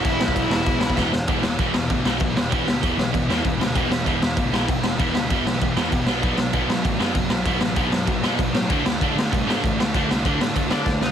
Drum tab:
CC |x---x---x-------|x---x---x---x---|x---x---x---x---|x---x---x---x---|
SD |--o---o---o-o-o-|--o---o---o---o-|--o---o---o---o-|--o---o---o---o-|
BD |o--oo---o--oo---|o---o---o---o---|o---o---o---o---|o---o---o---o---|

CC |x---x---x---x---|x---x---x---x---|x---x---x---x---|x---x---x---x---|
SD |--o---o---o---o-|--o---o---o---o-|--o---o---o---o-|--o---o---o---o-|
BD |o---o---o---o---|o---o---o---o---|o---o---o---o---|o---o---o---o---|

CC |x---x---x-------|
SD |--o---o---o-o-o-|
BD |o---o---o---o---|